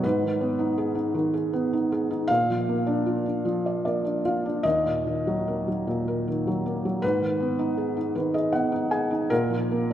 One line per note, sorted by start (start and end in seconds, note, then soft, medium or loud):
0.03 2.26 G#2 medium
0.03 2.36 B4 medium
0.22 1.13 D#3 soft
0.41 1.52 B3 medium
0.59 0.93 D#4 medium
0.78 1.32 G#4 medium
0.95 1.72 D#4 soft
1.15 2.26 D#3 medium
1.34 1.91 G#4 soft
1.53 2.27 B3 medium
1.73 2.09 D#4 medium
1.92 2.29 G#4 medium
2.11 2.29 D#4 medium
2.28 4.61 A#2 medium
2.28 4.19 F5 medium
2.50 3.44 F3 soft
2.69 3.84 A#3 medium
2.87 3.24 D4 medium
3.06 4.24 F4 soft
3.26 4.03 D4 soft
3.45 4.62 F3 medium
3.66 3.84 D5 soft
3.85 4.63 A#3 soft
3.85 4.22 D5 medium
4.05 4.44 D4 soft
4.25 4.64 F4 soft
4.25 4.63 F5 medium
4.46 4.65 D4 soft
4.63 6.99 D#2 medium
4.63 7.09 D#5 medium
4.86 5.86 A#2 soft
5.07 6.26 D#3 soft
5.27 5.66 F#3 medium
5.48 6.64 A#3 soft
5.68 6.46 F#3 soft
5.87 7.00 A#2 medium
6.08 7.01 A#4 soft
6.28 7.01 D#3 soft
6.47 6.84 F#3 medium
6.66 7.02 A#3 soft
6.85 7.03 F#3 soft
7.02 9.27 G#2 medium
7.02 8.14 B4 medium
7.22 8.14 D#3 soft
7.40 8.51 B3 medium
7.59 7.95 D#4 medium
7.77 8.33 G#4 soft
7.97 8.70 D#4 soft
8.15 9.27 D#3 medium
8.15 8.33 B4 medium
8.34 8.90 G#4 soft
8.34 8.52 D#5 medium
8.52 9.28 B3 soft
8.52 8.89 F#5 medium
8.72 9.09 D#4 medium
8.91 9.29 G#4 medium
8.91 9.28 G#5 medium
9.11 9.30 D#4 medium
9.30 9.93 A#2 medium
9.30 9.93 A#4 medium
9.50 9.93 F3 soft
9.71 9.93 A#3 medium